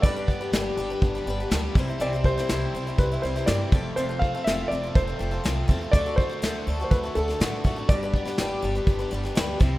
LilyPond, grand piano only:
\new Staff \with { instrumentName = "Grand piano" } { \time 4/4 \key g \major \tempo 4 = 122 d''2. r4 | d''8 c''4. b'8 c''8 d''4 | c''8 f''8 e''8 d''8 c''4 r4 | d''8 c''4 r16. c''32 b'8 a'4. |
d''2. r4 | }